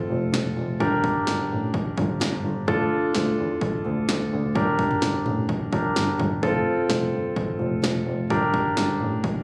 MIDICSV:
0, 0, Header, 1, 4, 480
1, 0, Start_track
1, 0, Key_signature, -2, "minor"
1, 0, Tempo, 468750
1, 823, Time_signature, 4, 2, 24, 8
1, 9657, End_track
2, 0, Start_track
2, 0, Title_t, "Grand piano"
2, 0, Program_c, 0, 0
2, 0, Note_on_c, 0, 60, 71
2, 0, Note_on_c, 0, 65, 65
2, 0, Note_on_c, 0, 69, 79
2, 785, Note_off_c, 0, 60, 0
2, 785, Note_off_c, 0, 65, 0
2, 785, Note_off_c, 0, 69, 0
2, 823, Note_on_c, 0, 62, 70
2, 823, Note_on_c, 0, 67, 64
2, 823, Note_on_c, 0, 70, 80
2, 2705, Note_off_c, 0, 62, 0
2, 2705, Note_off_c, 0, 67, 0
2, 2705, Note_off_c, 0, 70, 0
2, 2743, Note_on_c, 0, 62, 72
2, 2743, Note_on_c, 0, 65, 67
2, 2744, Note_on_c, 0, 69, 81
2, 4625, Note_off_c, 0, 62, 0
2, 4625, Note_off_c, 0, 65, 0
2, 4625, Note_off_c, 0, 69, 0
2, 4664, Note_on_c, 0, 67, 64
2, 4665, Note_on_c, 0, 62, 70
2, 4665, Note_on_c, 0, 70, 81
2, 5840, Note_off_c, 0, 62, 0
2, 5840, Note_off_c, 0, 67, 0
2, 5840, Note_off_c, 0, 70, 0
2, 5863, Note_on_c, 0, 67, 51
2, 5864, Note_on_c, 0, 62, 55
2, 5864, Note_on_c, 0, 70, 60
2, 6583, Note_on_c, 0, 60, 72
2, 6583, Note_on_c, 0, 65, 66
2, 6583, Note_on_c, 0, 69, 80
2, 6584, Note_off_c, 0, 62, 0
2, 6584, Note_off_c, 0, 67, 0
2, 6584, Note_off_c, 0, 70, 0
2, 8465, Note_off_c, 0, 60, 0
2, 8465, Note_off_c, 0, 65, 0
2, 8465, Note_off_c, 0, 69, 0
2, 8503, Note_on_c, 0, 62, 72
2, 8503, Note_on_c, 0, 67, 65
2, 8503, Note_on_c, 0, 70, 80
2, 9657, Note_off_c, 0, 62, 0
2, 9657, Note_off_c, 0, 67, 0
2, 9657, Note_off_c, 0, 70, 0
2, 9657, End_track
3, 0, Start_track
3, 0, Title_t, "Double bass"
3, 0, Program_c, 1, 43
3, 103, Note_on_c, 1, 29, 93
3, 184, Note_off_c, 1, 29, 0
3, 342, Note_on_c, 1, 29, 95
3, 424, Note_off_c, 1, 29, 0
3, 582, Note_on_c, 1, 29, 95
3, 664, Note_off_c, 1, 29, 0
3, 824, Note_on_c, 1, 31, 101
3, 906, Note_off_c, 1, 31, 0
3, 1303, Note_on_c, 1, 31, 92
3, 1385, Note_off_c, 1, 31, 0
3, 1544, Note_on_c, 1, 33, 82
3, 1626, Note_off_c, 1, 33, 0
3, 2023, Note_on_c, 1, 31, 95
3, 2105, Note_off_c, 1, 31, 0
3, 2262, Note_on_c, 1, 31, 98
3, 2344, Note_off_c, 1, 31, 0
3, 2503, Note_on_c, 1, 31, 90
3, 2585, Note_off_c, 1, 31, 0
3, 2744, Note_on_c, 1, 38, 105
3, 2826, Note_off_c, 1, 38, 0
3, 3222, Note_on_c, 1, 38, 99
3, 3304, Note_off_c, 1, 38, 0
3, 3463, Note_on_c, 1, 40, 83
3, 3545, Note_off_c, 1, 40, 0
3, 3943, Note_on_c, 1, 38, 94
3, 4025, Note_off_c, 1, 38, 0
3, 4184, Note_on_c, 1, 38, 97
3, 4265, Note_off_c, 1, 38, 0
3, 4424, Note_on_c, 1, 38, 97
3, 4506, Note_off_c, 1, 38, 0
3, 4664, Note_on_c, 1, 31, 103
3, 4746, Note_off_c, 1, 31, 0
3, 5144, Note_on_c, 1, 31, 103
3, 5226, Note_off_c, 1, 31, 0
3, 5384, Note_on_c, 1, 33, 92
3, 5466, Note_off_c, 1, 33, 0
3, 5863, Note_on_c, 1, 31, 83
3, 5945, Note_off_c, 1, 31, 0
3, 6104, Note_on_c, 1, 31, 97
3, 6186, Note_off_c, 1, 31, 0
3, 6344, Note_on_c, 1, 31, 95
3, 6426, Note_off_c, 1, 31, 0
3, 6583, Note_on_c, 1, 29, 97
3, 6665, Note_off_c, 1, 29, 0
3, 7063, Note_on_c, 1, 29, 98
3, 7145, Note_off_c, 1, 29, 0
3, 7303, Note_on_c, 1, 31, 84
3, 7385, Note_off_c, 1, 31, 0
3, 7783, Note_on_c, 1, 29, 93
3, 7865, Note_off_c, 1, 29, 0
3, 8022, Note_on_c, 1, 29, 102
3, 8104, Note_off_c, 1, 29, 0
3, 8263, Note_on_c, 1, 29, 96
3, 8345, Note_off_c, 1, 29, 0
3, 8503, Note_on_c, 1, 31, 99
3, 8585, Note_off_c, 1, 31, 0
3, 8983, Note_on_c, 1, 31, 95
3, 9065, Note_off_c, 1, 31, 0
3, 9224, Note_on_c, 1, 33, 84
3, 9305, Note_off_c, 1, 33, 0
3, 9657, End_track
4, 0, Start_track
4, 0, Title_t, "Drums"
4, 345, Note_on_c, 9, 38, 111
4, 448, Note_off_c, 9, 38, 0
4, 823, Note_on_c, 9, 36, 97
4, 926, Note_off_c, 9, 36, 0
4, 1062, Note_on_c, 9, 36, 92
4, 1165, Note_off_c, 9, 36, 0
4, 1302, Note_on_c, 9, 38, 107
4, 1404, Note_off_c, 9, 38, 0
4, 1781, Note_on_c, 9, 36, 92
4, 1883, Note_off_c, 9, 36, 0
4, 2023, Note_on_c, 9, 36, 92
4, 2125, Note_off_c, 9, 36, 0
4, 2264, Note_on_c, 9, 38, 112
4, 2367, Note_off_c, 9, 38, 0
4, 2744, Note_on_c, 9, 36, 105
4, 2846, Note_off_c, 9, 36, 0
4, 3221, Note_on_c, 9, 38, 108
4, 3323, Note_off_c, 9, 38, 0
4, 3701, Note_on_c, 9, 36, 93
4, 3803, Note_off_c, 9, 36, 0
4, 4185, Note_on_c, 9, 38, 113
4, 4288, Note_off_c, 9, 38, 0
4, 4664, Note_on_c, 9, 36, 103
4, 4767, Note_off_c, 9, 36, 0
4, 4903, Note_on_c, 9, 36, 92
4, 5005, Note_off_c, 9, 36, 0
4, 5025, Note_on_c, 9, 45, 87
4, 5128, Note_off_c, 9, 45, 0
4, 5141, Note_on_c, 9, 38, 110
4, 5243, Note_off_c, 9, 38, 0
4, 5384, Note_on_c, 9, 45, 78
4, 5486, Note_off_c, 9, 45, 0
4, 5621, Note_on_c, 9, 36, 90
4, 5723, Note_off_c, 9, 36, 0
4, 5863, Note_on_c, 9, 36, 92
4, 5966, Note_off_c, 9, 36, 0
4, 6105, Note_on_c, 9, 38, 106
4, 6208, Note_off_c, 9, 38, 0
4, 6344, Note_on_c, 9, 36, 91
4, 6447, Note_off_c, 9, 36, 0
4, 6584, Note_on_c, 9, 36, 103
4, 6686, Note_off_c, 9, 36, 0
4, 7062, Note_on_c, 9, 38, 109
4, 7164, Note_off_c, 9, 38, 0
4, 7541, Note_on_c, 9, 36, 91
4, 7643, Note_off_c, 9, 36, 0
4, 8025, Note_on_c, 9, 38, 107
4, 8127, Note_off_c, 9, 38, 0
4, 8503, Note_on_c, 9, 36, 104
4, 8606, Note_off_c, 9, 36, 0
4, 8742, Note_on_c, 9, 36, 90
4, 8844, Note_off_c, 9, 36, 0
4, 8981, Note_on_c, 9, 38, 107
4, 9083, Note_off_c, 9, 38, 0
4, 9460, Note_on_c, 9, 36, 91
4, 9563, Note_off_c, 9, 36, 0
4, 9657, End_track
0, 0, End_of_file